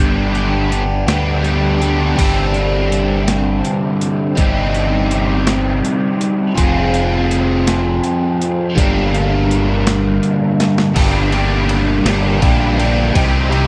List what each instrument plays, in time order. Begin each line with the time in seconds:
Already playing: fingered electric bass G1, overdriven electric guitar G2 D3 G3
0.00 overdriven electric guitar B3 D4 G4
0.32 overdriven electric guitar G3 B3 D4 G4, closed hi-hat
0.69 overdriven electric guitar G3 B3 D4 G4, closed hi-hat
1.06 fingered electric bass D2, overdriven electric guitar G3 B3 D4 G4, snare, closed hi-hat
1.42 overdriven electric guitar G3 B3 D4 G4, closed hi-hat
1.78 overdriven electric guitar G3 B3 D4 G4, closed hi-hat
2.14 overdriven electric guitar G2 D3 G3 C4 D4 G4
2.18 fingered electric bass G1, kick, closed hi-hat, crash
2.54 closed hi-hat
2.92 closed hi-hat
3.28 snare, closed hi-hat
3.65 closed hi-hat
4.01 closed hi-hat
4.35 fingered electric bass G1, overdriven electric guitar G3 C4 D#4 G4, kick, closed hi-hat
4.75 closed hi-hat
5.11 closed hi-hat
5.47 snare, closed hi-hat
5.85 closed hi-hat
6.21 closed hi-hat
6.55 fingered electric bass F1, overdriven electric guitar F3 C4 F4 G#4, kick, closed hi-hat
6.94 closed hi-hat
7.31 closed hi-hat
7.67 snare, closed hi-hat
8.04 closed hi-hat
8.41 closed hi-hat
8.75 fingered electric bass G1, overdriven electric guitar G2 D3 G3 A#3 D4 G4 A#4, kick, closed hi-hat
9.14 closed hi-hat
9.51 closed hi-hat
9.87 snare, closed hi-hat
10.23 closed hi-hat
10.60 snare, closed hi-hat
10.78 snare
10.93 fingered electric bass G1, overdriven electric guitar G2 D3 G3 A#3 D4 G4, kick, crash, ride
11.31 overdriven electric guitar G2 D3 G3 A#3 D4 G4, ride
11.69 ride
12.03 fingered electric bass G1, overdriven electric guitar G2 D3 G3 A#3 D4 G4, snare, ride
12.40 fingered electric bass A#1, overdriven electric guitar G2 D3 G3 A#3 D4 G4, kick, ride
12.77 overdriven electric guitar G2 D3 G3 A#3 D4 G4, ride
13.13 fingered electric bass C2, overdriven electric guitar C3 G3 C4 D#4 G4, kick, ride
13.50 overdriven electric guitar C3 G3 C4 D#4 G4, ride